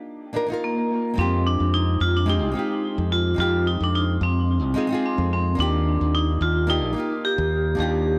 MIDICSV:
0, 0, Header, 1, 4, 480
1, 0, Start_track
1, 0, Tempo, 550459
1, 1030, Time_signature, 4, 2, 24, 8
1, 7140, End_track
2, 0, Start_track
2, 0, Title_t, "Nylon-string guitar"
2, 0, Program_c, 0, 24
2, 0, Note_on_c, 0, 58, 67
2, 0, Note_on_c, 0, 62, 64
2, 0, Note_on_c, 0, 63, 63
2, 0, Note_on_c, 0, 65, 62
2, 0, Note_on_c, 0, 67, 80
2, 273, Note_off_c, 0, 58, 0
2, 281, Note_off_c, 0, 62, 0
2, 286, Note_on_c, 0, 58, 81
2, 289, Note_off_c, 0, 63, 0
2, 295, Note_on_c, 0, 62, 82
2, 296, Note_off_c, 0, 65, 0
2, 302, Note_on_c, 0, 63, 76
2, 303, Note_off_c, 0, 67, 0
2, 311, Note_on_c, 0, 65, 76
2, 317, Note_on_c, 0, 70, 99
2, 396, Note_off_c, 0, 58, 0
2, 402, Note_off_c, 0, 62, 0
2, 406, Note_off_c, 0, 63, 0
2, 406, Note_on_c, 0, 58, 85
2, 410, Note_off_c, 0, 65, 0
2, 413, Note_off_c, 0, 70, 0
2, 422, Note_on_c, 0, 62, 82
2, 431, Note_off_c, 0, 62, 0
2, 435, Note_on_c, 0, 63, 82
2, 451, Note_on_c, 0, 65, 80
2, 466, Note_on_c, 0, 70, 98
2, 986, Note_off_c, 0, 58, 0
2, 991, Note_on_c, 0, 56, 86
2, 1000, Note_off_c, 0, 63, 0
2, 1006, Note_on_c, 0, 60, 80
2, 1008, Note_off_c, 0, 65, 0
2, 1016, Note_off_c, 0, 70, 0
2, 1022, Note_on_c, 0, 63, 77
2, 1038, Note_on_c, 0, 65, 74
2, 1053, Note_on_c, 0, 67, 89
2, 1944, Note_off_c, 0, 56, 0
2, 1952, Note_off_c, 0, 60, 0
2, 1960, Note_off_c, 0, 63, 0
2, 1968, Note_off_c, 0, 65, 0
2, 1968, Note_on_c, 0, 56, 93
2, 1975, Note_off_c, 0, 67, 0
2, 1978, Note_on_c, 0, 60, 77
2, 1985, Note_on_c, 0, 63, 88
2, 1994, Note_on_c, 0, 65, 88
2, 2000, Note_on_c, 0, 67, 100
2, 2184, Note_off_c, 0, 56, 0
2, 2194, Note_on_c, 0, 56, 82
2, 2198, Note_off_c, 0, 60, 0
2, 2201, Note_off_c, 0, 63, 0
2, 2206, Note_off_c, 0, 65, 0
2, 2209, Note_off_c, 0, 67, 0
2, 2211, Note_on_c, 0, 60, 74
2, 2225, Note_on_c, 0, 63, 72
2, 2240, Note_on_c, 0, 65, 67
2, 2258, Note_on_c, 0, 67, 92
2, 2906, Note_off_c, 0, 56, 0
2, 2914, Note_off_c, 0, 60, 0
2, 2915, Note_on_c, 0, 56, 77
2, 2921, Note_off_c, 0, 63, 0
2, 2929, Note_off_c, 0, 65, 0
2, 2931, Note_on_c, 0, 60, 74
2, 2938, Note_off_c, 0, 67, 0
2, 2946, Note_on_c, 0, 63, 78
2, 2961, Note_on_c, 0, 65, 70
2, 2976, Note_on_c, 0, 67, 89
2, 4110, Note_off_c, 0, 56, 0
2, 4118, Note_off_c, 0, 60, 0
2, 4126, Note_off_c, 0, 63, 0
2, 4133, Note_off_c, 0, 65, 0
2, 4133, Note_on_c, 0, 56, 98
2, 4140, Note_on_c, 0, 60, 90
2, 4141, Note_off_c, 0, 67, 0
2, 4150, Note_on_c, 0, 63, 86
2, 4157, Note_on_c, 0, 65, 87
2, 4164, Note_on_c, 0, 68, 111
2, 4238, Note_off_c, 0, 56, 0
2, 4245, Note_off_c, 0, 60, 0
2, 4248, Note_on_c, 0, 56, 99
2, 4250, Note_off_c, 0, 63, 0
2, 4253, Note_off_c, 0, 65, 0
2, 4257, Note_off_c, 0, 68, 0
2, 4263, Note_on_c, 0, 60, 96
2, 4278, Note_on_c, 0, 63, 88
2, 4295, Note_on_c, 0, 65, 92
2, 4310, Note_on_c, 0, 68, 113
2, 4827, Note_off_c, 0, 56, 0
2, 4834, Note_off_c, 0, 60, 0
2, 4841, Note_on_c, 0, 58, 80
2, 4842, Note_off_c, 0, 63, 0
2, 4850, Note_off_c, 0, 65, 0
2, 4855, Note_on_c, 0, 62, 81
2, 4858, Note_off_c, 0, 68, 0
2, 4871, Note_on_c, 0, 51, 76
2, 4887, Note_on_c, 0, 65, 77
2, 4902, Note_on_c, 0, 67, 98
2, 5789, Note_off_c, 0, 58, 0
2, 5796, Note_off_c, 0, 62, 0
2, 5804, Note_off_c, 0, 51, 0
2, 5812, Note_off_c, 0, 65, 0
2, 5815, Note_on_c, 0, 58, 89
2, 5820, Note_off_c, 0, 67, 0
2, 5824, Note_on_c, 0, 62, 85
2, 5831, Note_on_c, 0, 63, 83
2, 5840, Note_on_c, 0, 65, 82
2, 5845, Note_on_c, 0, 67, 106
2, 6030, Note_off_c, 0, 58, 0
2, 6041, Note_off_c, 0, 62, 0
2, 6041, Note_on_c, 0, 58, 80
2, 6044, Note_off_c, 0, 63, 0
2, 6049, Note_off_c, 0, 65, 0
2, 6052, Note_off_c, 0, 67, 0
2, 6054, Note_on_c, 0, 62, 77
2, 6067, Note_off_c, 0, 62, 0
2, 6070, Note_on_c, 0, 63, 71
2, 6084, Note_on_c, 0, 65, 74
2, 6101, Note_on_c, 0, 67, 82
2, 6749, Note_off_c, 0, 58, 0
2, 6758, Note_on_c, 0, 58, 85
2, 6764, Note_off_c, 0, 63, 0
2, 6771, Note_off_c, 0, 65, 0
2, 6773, Note_on_c, 0, 62, 71
2, 6779, Note_off_c, 0, 67, 0
2, 6788, Note_on_c, 0, 63, 71
2, 6804, Note_on_c, 0, 65, 75
2, 6818, Note_on_c, 0, 67, 86
2, 7140, Note_off_c, 0, 58, 0
2, 7140, Note_off_c, 0, 62, 0
2, 7140, Note_off_c, 0, 63, 0
2, 7140, Note_off_c, 0, 65, 0
2, 7140, Note_off_c, 0, 67, 0
2, 7140, End_track
3, 0, Start_track
3, 0, Title_t, "Vibraphone"
3, 0, Program_c, 1, 11
3, 559, Note_on_c, 1, 58, 75
3, 1037, Note_on_c, 1, 60, 88
3, 1049, Note_off_c, 1, 58, 0
3, 1278, Note_on_c, 1, 62, 89
3, 1281, Note_off_c, 1, 60, 0
3, 1497, Note_off_c, 1, 62, 0
3, 1516, Note_on_c, 1, 63, 91
3, 1756, Note_on_c, 1, 65, 96
3, 1760, Note_off_c, 1, 63, 0
3, 1888, Note_off_c, 1, 65, 0
3, 1890, Note_on_c, 1, 62, 91
3, 1987, Note_off_c, 1, 62, 0
3, 2001, Note_on_c, 1, 63, 93
3, 2680, Note_off_c, 1, 63, 0
3, 2722, Note_on_c, 1, 65, 101
3, 2955, Note_off_c, 1, 65, 0
3, 2966, Note_on_c, 1, 65, 106
3, 3181, Note_off_c, 1, 65, 0
3, 3203, Note_on_c, 1, 63, 96
3, 3319, Note_off_c, 1, 63, 0
3, 3345, Note_on_c, 1, 62, 93
3, 3435, Note_off_c, 1, 62, 0
3, 3447, Note_on_c, 1, 63, 98
3, 3551, Note_off_c, 1, 63, 0
3, 3689, Note_on_c, 1, 60, 98
3, 4399, Note_off_c, 1, 60, 0
3, 4410, Note_on_c, 1, 60, 93
3, 4513, Note_off_c, 1, 60, 0
3, 4649, Note_on_c, 1, 60, 95
3, 4884, Note_on_c, 1, 62, 101
3, 4886, Note_off_c, 1, 60, 0
3, 5361, Note_on_c, 1, 63, 105
3, 5371, Note_off_c, 1, 62, 0
3, 5599, Note_on_c, 1, 65, 99
3, 5602, Note_off_c, 1, 63, 0
3, 5839, Note_on_c, 1, 63, 104
3, 5841, Note_off_c, 1, 65, 0
3, 6281, Note_off_c, 1, 63, 0
3, 6320, Note_on_c, 1, 67, 113
3, 6792, Note_off_c, 1, 67, 0
3, 6802, Note_on_c, 1, 67, 99
3, 7140, Note_off_c, 1, 67, 0
3, 7140, End_track
4, 0, Start_track
4, 0, Title_t, "Fingered electric bass"
4, 0, Program_c, 2, 33
4, 1028, Note_on_c, 2, 41, 105
4, 1359, Note_off_c, 2, 41, 0
4, 1396, Note_on_c, 2, 41, 79
4, 1713, Note_off_c, 2, 41, 0
4, 1747, Note_on_c, 2, 41, 88
4, 2117, Note_off_c, 2, 41, 0
4, 2117, Note_on_c, 2, 36, 100
4, 2207, Note_off_c, 2, 36, 0
4, 2599, Note_on_c, 2, 41, 84
4, 2915, Note_off_c, 2, 41, 0
4, 2948, Note_on_c, 2, 41, 103
4, 3279, Note_off_c, 2, 41, 0
4, 3318, Note_on_c, 2, 41, 84
4, 3634, Note_off_c, 2, 41, 0
4, 3671, Note_on_c, 2, 41, 99
4, 4039, Note_off_c, 2, 41, 0
4, 4039, Note_on_c, 2, 36, 100
4, 4128, Note_off_c, 2, 36, 0
4, 4518, Note_on_c, 2, 41, 82
4, 4834, Note_off_c, 2, 41, 0
4, 4871, Note_on_c, 2, 39, 100
4, 5201, Note_off_c, 2, 39, 0
4, 5240, Note_on_c, 2, 39, 89
4, 5555, Note_off_c, 2, 39, 0
4, 5588, Note_on_c, 2, 39, 96
4, 5959, Note_off_c, 2, 39, 0
4, 5959, Note_on_c, 2, 34, 99
4, 6047, Note_off_c, 2, 34, 0
4, 6437, Note_on_c, 2, 39, 85
4, 6754, Note_off_c, 2, 39, 0
4, 6789, Note_on_c, 2, 39, 101
4, 7120, Note_off_c, 2, 39, 0
4, 7140, End_track
0, 0, End_of_file